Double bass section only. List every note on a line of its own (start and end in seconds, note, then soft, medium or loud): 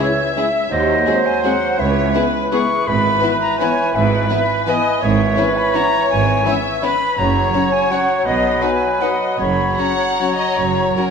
0.72 1.01 D#2 medium
1.79 2.09 C#2 medium
2.88 3.17 G#1 medium
3.96 4.25 G#1 medium
5.03 5.32 G#1 medium
6.11 6.40 G#1 medium
7.18 7.48 F#1 medium
8.27 8.56 B1 medium
9.40 9.72 F#1 medium
10.58 10.90 F#1 medium